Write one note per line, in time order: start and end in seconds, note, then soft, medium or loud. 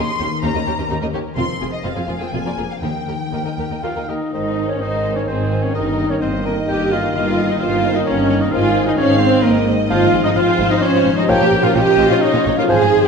0.00 1.40 D#3 medium
0.00 1.40 C#4 soft
0.00 0.42 C6 medium
0.19 0.24 D#2 medium
0.19 0.25 D#2 medium
0.19 0.26 C#4 soft
0.19 0.24 G4 soft
0.19 0.25 G4 soft
0.19 0.66 A#4 soft
0.19 0.24 C#5 soft
0.42 0.48 D#2 medium
0.42 0.49 C#4 medium
0.42 0.48 D#4 medium
0.42 0.49 G4 medium
0.42 0.47 A#4 medium
0.42 0.89 A#5 medium
0.54 0.60 D#2 medium
0.54 0.60 C#4 soft
0.54 0.60 G4 soft
0.54 0.60 A#4 soft
0.54 0.59 D#5 soft
0.66 0.71 D#2 soft
0.66 0.71 D#2 medium
0.66 0.72 C#4 medium
0.66 0.71 G4 medium
0.66 0.72 G4 medium
0.66 1.13 A#4 soft
0.66 0.71 C#5 soft
0.78 0.83 D#2 soft
0.78 0.84 C#4 medium
0.78 0.84 G4 soft
0.78 0.83 A#4 medium
0.78 0.83 D#5 soft
0.90 0.95 D#2 medium
0.90 0.96 C#4 medium
0.90 0.95 D#4 medium
0.90 1.40 G4 soft
0.90 0.96 G4 medium
0.90 0.95 A#4 medium
1.01 1.07 D#2 soft
1.01 1.08 C#4 medium
1.01 1.07 G4 medium
1.01 1.06 A#4 medium
1.01 1.06 D#5 medium
1.13 1.18 D#2 soft
1.13 1.19 D#2 soft
1.13 1.19 C#4 soft
1.13 1.19 G4 medium
1.13 1.19 G4 soft
1.13 1.40 A#4 soft
1.13 1.19 C#5 medium
1.37 1.42 F1 medium
1.37 1.42 F2 medium
1.37 2.32 F3 medium
1.37 1.42 C4 medium
1.37 1.43 C4 medium
1.37 1.42 F4 medium
1.37 1.43 F4 medium
1.37 1.71 C6 medium
1.61 1.66 F1 soft
1.61 1.66 F2 soft
1.61 1.67 C4 soft
1.61 1.66 F4 soft
1.61 1.66 G#4 soft
1.61 2.08 G#4 soft
1.73 1.85 D#5 medium
1.84 1.89 F1 medium
1.84 1.89 F2 medium
1.84 1.89 C4 medium
1.84 1.90 C4 medium
1.84 1.89 F4 medium
1.84 1.90 F4 medium
1.84 2.26 A#4 soft
1.84 2.21 F5 medium
1.96 2.01 F2 soft
1.96 2.02 C4 soft
1.96 2.02 F4 soft
1.96 2.01 G#4 soft
1.96 2.01 C5 soft
2.08 2.14 F1 soft
2.08 2.13 F2 soft
2.08 2.14 C4 soft
2.08 2.13 F4 soft
2.08 2.14 F4 soft
2.08 2.13 G#4 soft
2.08 2.85 G#4 soft
2.20 2.25 F2 soft
2.20 2.26 C4 soft
2.20 2.26 F4 soft
2.20 2.25 G#4 soft
2.20 2.26 C5 soft
2.20 2.33 G5 medium
2.33 2.38 F1 medium
2.33 2.38 F2 medium
2.33 2.85 F3 soft
2.33 2.38 A#3 soft
2.33 2.38 F4 medium
2.33 2.38 G#4 medium
2.33 2.70 G#5 medium
2.45 2.50 F2 soft
2.45 2.50 A#3 soft
2.45 2.50 F4 soft
2.45 2.51 A#4 soft
2.45 2.51 D5 soft
2.57 2.63 F1 soft
2.57 2.62 F2 soft
2.57 2.62 A#3 soft
2.57 2.84 D4 soft
2.57 2.62 F4 soft
2.57 2.63 G#4 soft
2.57 3.06 A#4 soft
2.57 2.63 A#4 soft
2.71 2.83 F5 medium
2.82 2.87 D#2 soft
2.82 2.88 D#2 soft
2.82 4.35 D#3 soft
2.82 2.88 A#3 soft
2.82 2.88 D#4 soft
2.82 2.88 G4 soft
2.82 2.87 A#4 soft
2.82 4.07 G5 medium
3.07 3.12 D#2 soft
3.07 3.13 D#2 soft
3.07 3.13 A#3 soft
3.07 3.13 G4 soft
3.07 3.56 A#4 soft
3.07 3.13 A#4 soft
3.32 3.37 D#2 soft
3.32 3.38 D#2 soft
3.32 3.38 A#3 soft
3.32 3.38 D#4 soft
3.32 3.38 G4 soft
3.32 3.38 A#4 soft
3.32 3.75 C5 soft
3.45 3.50 D#2 soft
3.45 3.50 A#3 soft
3.45 3.50 A#4 soft
3.45 3.51 A#4 soft
3.45 3.51 D#5 soft
3.58 3.63 D#2 soft
3.58 3.63 A#3 soft
3.58 3.64 G4 soft
3.58 4.08 A#4 soft
3.58 3.63 A#4 soft
3.58 3.64 A#4 soft
3.70 3.75 D#2 soft
3.70 3.76 A#3 soft
3.70 3.76 A#4 soft
3.70 3.76 D#5 soft
3.83 3.88 D#2 soft
3.83 3.88 A#3 soft
3.83 4.56 D#4 soft
3.83 3.89 D#4 soft
3.83 3.91 F4 medium
3.83 3.95 F4 soft
3.83 3.89 G4 soft
3.83 3.89 A#4 soft
3.83 4.07 F5 soft
3.83 4.10 F5 medium
3.96 4.01 D#2 soft
3.96 4.01 A#3 soft
3.96 4.01 A#4 soft
3.96 4.01 D#5 soft
4.08 4.13 D#2 soft
4.08 4.14 D#2 soft
4.08 4.13 A#3 soft
4.08 4.32 D#4 soft
4.08 4.14 G4 soft
4.08 4.14 A#4 soft
4.08 4.32 D#5 soft
4.33 4.75 G#1 medium
4.33 4.75 G#2 medium
4.33 5.77 G#2 soft
4.33 7.11 D#3 soft
4.33 5.71 C4 soft
4.33 4.68 D#4 medium
4.33 5.71 C5 soft
4.33 4.42 C5 soft
4.33 4.68 D#5 medium
4.33 4.67 D#5 soft
4.45 5.62 C4 soft
4.57 5.38 D#4 soft
4.57 4.65 C5 soft
4.68 4.81 C#4 soft
4.68 4.81 C#4 medium
4.68 5.27 G#4 soft
4.68 4.73 C#5 soft
4.68 4.80 C#5 soft
4.80 5.22 G#1 soft
4.80 5.22 G#2 medium
4.80 5.15 D#4 medium
4.80 5.16 D#4 medium
4.80 5.77 C5 soft
4.80 5.25 C5 soft
4.80 4.89 C5 soft
4.80 5.15 D#5 medium
4.80 5.17 D#5 medium
4.93 5.15 D#5 soft
5.04 5.13 C5 soft
5.04 5.77 G#5 soft
5.16 5.21 C#4 medium
5.16 5.28 C#4 soft
5.16 5.27 C#5 soft
5.16 5.29 C#5 soft
5.16 6.32 D#5 soft
5.27 5.69 G#1 medium
5.27 5.69 G#2 medium
5.27 5.63 C4 medium
5.27 5.77 G#4 soft
5.27 5.74 G#4 soft
5.27 5.64 C5 medium
5.27 5.36 C5 soft
5.40 5.97 D#4 soft
5.51 5.77 D#3 soft
5.51 5.59 C5 soft
5.63 5.77 C4 soft
5.63 5.75 C#4 soft
5.63 5.75 C#4 medium
5.63 5.76 C#5 soft
5.63 5.75 C#5 soft
5.74 6.16 G1 medium
5.74 6.16 G2 medium
5.74 7.14 G2 medium
5.74 8.49 A#3 medium
5.74 6.10 D#4 medium
5.74 6.21 A#4 soft
5.74 8.49 A#4 medium
5.74 6.11 D#5 medium
5.74 5.83 D#5 soft
5.74 6.12 D#5 medium
5.86 7.02 A#3 soft
5.98 6.20 D#4 soft
5.98 6.07 D#5 soft
6.10 6.21 C#4 soft
6.10 6.15 C#4 medium
6.10 6.67 A#4 soft
6.10 6.22 C#5 soft
6.10 6.21 C#5 soft
6.21 6.63 G1 soft
6.21 6.63 G2 medium
6.21 6.45 C4 medium
6.21 6.30 C4 medium
6.21 6.79 D#4 soft
6.21 6.44 C5 medium
6.21 6.28 C5 medium
6.21 7.58 D#5 medium
6.21 6.30 D#5 soft
6.33 6.56 D#5 soft
6.45 6.55 A#3 medium
6.45 6.53 A#3 medium
6.45 6.70 A#4 medium
6.45 6.56 A#4 medium
6.45 6.54 D#5 soft
6.45 7.83 A#5 soft
6.57 7.71 D#5 soft
6.68 7.09 G1 medium
6.68 7.09 G2 medium
6.68 6.91 G4 medium
6.68 7.48 A#4 soft
6.68 6.77 D#5 soft
6.68 6.93 G5 medium
6.68 6.91 G5 medium
6.80 7.37 D#4 soft
6.91 8.28 G3 soft
6.91 7.14 F4 medium
6.91 6.99 D#5 soft
6.91 7.14 F5 medium
6.91 7.15 F5 medium
7.03 7.25 A#3 soft
7.15 7.56 G1 medium
7.15 7.55 G2 medium
7.15 8.55 G2 medium
7.15 9.87 D#3 medium
7.15 7.49 F4 medium
7.15 7.23 D#5 soft
7.15 7.48 F5 medium
7.15 7.49 F5 medium
7.26 8.40 A#3 soft
7.37 7.60 D#4 soft
7.37 7.45 D#5 soft
7.49 7.61 D#4 medium
7.49 8.06 A#4 soft
7.49 7.60 D#5 soft
7.49 7.62 D#5 medium
7.60 8.01 G1 medium
7.60 8.01 G2 medium
7.60 8.17 D#4 soft
7.60 7.95 F4 medium
7.60 7.96 F4 medium
7.60 8.06 C5 medium
7.60 7.69 D#5 soft
7.60 7.96 F5 medium
7.60 7.95 F5 medium
7.73 7.94 D#5 soft
7.84 7.92 D#5 soft
7.84 8.55 A#5 medium
7.95 8.06 D#4 medium
7.95 8.07 D#4 medium
7.95 9.09 D#5 soft
7.95 8.06 D#5 medium
7.95 8.09 D#5 medium
8.06 8.47 G1 medium
8.06 8.47 G2 medium
8.06 8.41 C#4 medium
8.06 8.55 A#4 soft
8.06 8.53 A#4 medium
8.06 8.40 C#5 medium
8.06 8.43 C#5 medium
8.06 8.15 D#5 soft
8.18 8.75 D#4 soft
8.29 8.55 G3 soft
8.29 8.39 D#5 medium
8.41 8.55 A#3 soft
8.41 8.52 D#4 medium
8.41 8.53 D#4 medium
8.41 8.52 D#5 medium
8.41 8.54 D#5 medium
8.52 8.93 G#1 medium
8.52 8.93 G#2 medium
8.52 9.90 G#2 medium
8.52 11.12 C4 medium
8.52 8.87 F4 medium
8.52 8.98 G#4 medium
8.52 9.88 C5 medium
8.52 8.61 C5 medium
8.52 8.86 F5 medium
8.64 9.78 G#3 medium
8.76 9.56 D#4 soft
8.76 8.85 C5 medium
8.86 8.98 D#4 medium
8.86 8.92 D#4 medium
8.86 9.44 C5 medium
8.86 8.96 D#5 medium
8.86 9.00 D#5 medium
8.97 9.39 G#1 medium
8.97 9.39 G#2 medium
8.97 9.21 C#4 medium
8.97 11.31 G#4 medium
8.97 9.08 C5 medium
8.97 9.21 C#5 medium
8.97 9.23 C#5 medium
8.97 9.44 F5 medium
9.10 9.32 D#5 medium
9.20 9.45 C4 medium
9.20 9.44 C5 medium
9.20 9.46 C5 medium
9.20 9.30 C5 medium
9.20 10.59 C6 medium
9.34 9.93 D#5 medium
9.42 9.85 G#1 medium
9.42 9.85 G#2 medium
9.42 9.67 A#3 medium
9.42 9.68 A#3 medium
9.42 9.67 A#4 medium
9.42 9.68 A#4 medium
9.42 10.24 C5 medium
9.42 9.53 C5 medium
9.42 10.36 D#5 medium
9.57 9.93 D#4 medium
9.68 9.93 D#3 soft
9.68 9.76 C5 medium
9.79 11.04 G#3 medium
9.90 9.95 G#1 medium
9.90 9.95 G#2 medium
9.90 11.31 G#2 medium
9.90 10.06 F3 medium
9.90 12.68 F3 medium
9.90 10.22 F4 medium
9.90 9.95 F4 medium
9.90 10.23 F4 medium
9.90 10.06 C5 medium
9.90 10.22 F5 loud
9.90 10.26 F5 medium
10.01 10.06 G#2 medium
10.01 11.16 F3 medium
10.01 10.07 C5 medium
10.13 10.18 G#1 medium
10.13 10.17 G#2 medium
10.13 10.35 F4 medium
10.13 10.18 G#4 medium
10.24 10.29 G#2 medium
10.24 10.36 D#4 medium
10.24 10.30 D#4 medium
10.24 10.29 F4 medium
10.24 10.82 C5 medium
10.24 10.29 D#5 medium
10.24 10.38 D#5 medium
10.35 10.41 G#1 medium
10.35 10.40 G#2 medium
10.35 10.70 F4 medium
10.35 10.93 F4 medium
10.35 10.71 F4 medium
10.35 11.29 C5 medium
10.35 10.41 C5 medium
10.35 10.70 F5 medium
10.35 10.72 F5 medium
10.47 10.52 G#2 medium
10.47 10.53 G#4 medium
10.47 10.70 F5 medium
10.58 10.64 G#1 medium
10.58 10.63 G#2 medium
10.58 10.65 F4 medium
10.58 11.31 C6 medium
10.70 10.75 G#2 medium
10.70 10.82 D#4 medium
10.70 10.76 D#4 medium
10.70 10.76 C5 medium
10.70 10.83 D#5 medium
10.70 10.84 D#5 medium
10.70 11.86 F5 medium
10.82 11.17 C#4 loud
10.82 11.17 C#4 medium
10.82 11.31 C5 medium
10.82 11.17 C#5 medium
10.93 10.98 G#2 medium
10.93 11.51 F4 medium
10.93 11.00 F4 medium
11.05 11.10 G#1 medium
11.05 11.10 G#2 medium
11.05 11.31 G#3 medium
11.05 11.12 C5 medium
11.16 11.21 G#2 medium
11.16 11.40 F3 medium
11.16 11.29 D#4 medium
11.16 11.23 G#4 medium
11.16 11.30 D#5 medium
11.16 11.31 D#5 medium
11.28 11.34 A#1 medium
11.28 11.33 A#2 medium
11.28 12.72 A#2 medium
11.28 11.45 F3 medium
11.28 12.67 C#4 medium
11.28 11.34 F4 medium
11.28 11.63 G4 loud
11.28 11.74 A#4 medium
11.28 11.45 C#5 medium
11.28 11.65 G5 loud
11.28 11.66 G5 loud
11.40 11.45 A#2 medium
11.40 12.57 F3 medium
11.40 11.45 C#5 medium
11.52 11.57 A#1 medium
11.52 11.56 A#2 medium
11.52 11.74 F4 medium
11.52 11.57 A#4 medium
11.63 11.68 A#2 medium
11.63 11.75 F4 medium
11.63 11.69 F4 medium
11.63 11.76 F4 medium
11.63 12.21 C#5 medium
11.63 11.76 F5 medium
11.75 11.80 A#1 medium
11.75 11.80 A#2 medium
11.75 12.33 F4 medium
11.75 12.10 G4 medium
11.75 12.11 G4 loud
11.75 11.80 C#5 medium
11.75 12.22 D#5 medium
11.75 12.10 G5 medium
11.75 12.09 G5 medium
11.86 11.91 A#2 medium
11.86 11.93 A#4 medium
11.86 12.09 F5 medium
11.97 12.03 A#1 medium
11.97 12.02 A#2 medium
11.97 12.04 F4 medium
11.97 12.72 C#6 medium
12.10 12.15 A#2 medium
12.10 12.23 F4 medium
12.10 12.16 C#5 medium
12.10 12.15 F5 medium
12.10 12.23 F5 medium
12.21 12.57 D#4 medium
12.21 12.58 D#4 medium
12.21 12.70 C#5 medium
12.21 12.72 C#5 medium
12.21 12.59 D#5 medium
12.21 12.57 D#5 medium
12.33 12.38 A#2 medium
12.33 12.92 F4 medium
12.33 12.40 F4 medium
12.45 12.51 A#1 medium
12.45 12.50 A#2 medium
12.45 12.72 A#3 medium
12.45 12.51 C#5 medium
12.57 12.62 A#2 medium
12.57 12.80 F3 medium
12.57 12.70 F4 medium
12.57 12.63 F4 medium
12.57 12.63 A#4 medium
12.57 12.69 F5 medium
12.57 12.71 F5 medium
12.69 12.75 G#1 medium
12.69 12.74 G#2 medium
12.69 13.08 G#2 medium
12.69 12.85 F3 medium
12.69 13.08 F3 medium
12.69 13.08 C4 medium
12.69 12.74 G#4 medium
12.69 13.05 G#4 medium
12.69 13.04 G#4 loud
12.69 13.08 C5 medium
12.69 12.86 C5 medium
12.69 13.07 G#5 medium
12.69 13.04 G#5 medium
12.81 12.86 G#2 medium
12.81 13.08 F3 medium
12.81 12.86 F5 medium
12.93 12.98 G#1 medium
12.93 12.98 G#2 medium
12.93 13.08 F4 soft
12.93 12.98 C5 medium
13.04 13.08 G#2 medium
13.04 13.08 G#4 medium
13.04 13.08 C5 medium
13.04 13.08 G5 medium